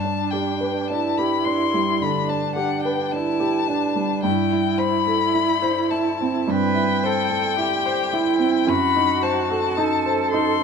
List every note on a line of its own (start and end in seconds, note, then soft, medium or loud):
0.00 1.99 G2 soft
0.00 0.93 D4 soft
0.00 0.32 A5 medium
0.04 0.50 D4 soft
0.30 0.79 G4 soft
0.30 0.90 G5 medium
0.61 1.07 B4 soft
0.88 1.35 D4 soft
0.88 2.06 E4 medium
0.88 1.19 A5 medium
1.18 1.64 G4 soft
1.18 1.46 B5 medium
1.45 1.92 D4 soft
1.45 2.04 C6 medium
1.74 2.19 G3 soft
2.01 2.47 D3 soft
2.01 3.17 D4 medium
2.01 2.31 B5 medium
2.28 2.74 D4 soft
2.28 2.55 A5 medium
2.56 3.02 G4 soft
2.56 2.83 F#5 medium
2.83 3.30 B4 soft
2.83 3.14 G5 medium
3.12 3.58 D4 soft
3.12 3.70 E4 medium
3.12 4.23 A5 medium
3.40 3.86 G4 soft
3.68 4.14 D4 soft
3.68 4.28 D4 medium
3.95 4.24 G3 soft
4.23 6.45 G2 medium
4.23 6.52 E4 medium
4.23 4.80 G5 medium
4.52 4.97 E4 soft
4.78 5.24 C5 soft
4.78 5.93 B5 medium
5.07 5.53 A4 soft
5.34 5.81 E4 soft
5.62 6.09 C5 soft
5.91 6.38 E4 soft
5.91 6.51 A5 medium
6.21 6.66 C4 soft
6.47 8.64 G2 soft
6.47 7.07 B4 medium
6.47 8.70 G5 medium
6.75 7.21 E4 soft
7.03 7.59 A4 medium
7.03 7.49 C5 soft
7.30 7.76 A4 soft
7.58 8.03 E4 soft
7.58 8.16 G4 medium
7.86 8.31 C5 soft
8.13 8.58 E4 soft
8.13 8.72 E4 medium
8.38 8.68 C4 soft
8.67 10.63 F#2 medium
8.67 9.79 F#4 medium
8.67 9.25 B5 medium
8.96 9.40 D#4 soft
9.22 9.66 C5 soft
9.22 10.31 A5 medium
9.51 9.94 A4 soft
9.77 10.21 D#4 soft
9.77 10.63 A4 medium
10.06 10.49 C5 soft
10.31 10.63 D#4 soft
10.31 10.63 C6 medium